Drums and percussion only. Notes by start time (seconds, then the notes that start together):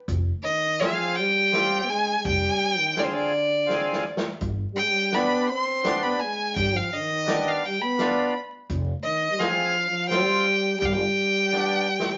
0.08 kick, closed hi-hat
0.81 snare, closed hi-hat
1.53 snare, closed hi-hat
2.25 kick, closed hi-hat
2.97 snare, closed hi-hat
3.69 snare
3.93 snare
4.17 snare
4.41 kick, closed hi-hat
5.12 snare, closed hi-hat
5.84 snare, closed hi-hat
6.56 kick, closed hi-hat
7.28 snare, closed hi-hat
7.99 snare, closed hi-hat
8.70 kick, closed hi-hat
9.40 snare, closed hi-hat
10.11 snare, closed hi-hat
10.82 kick, closed hi-hat
11.53 snare
11.99 snare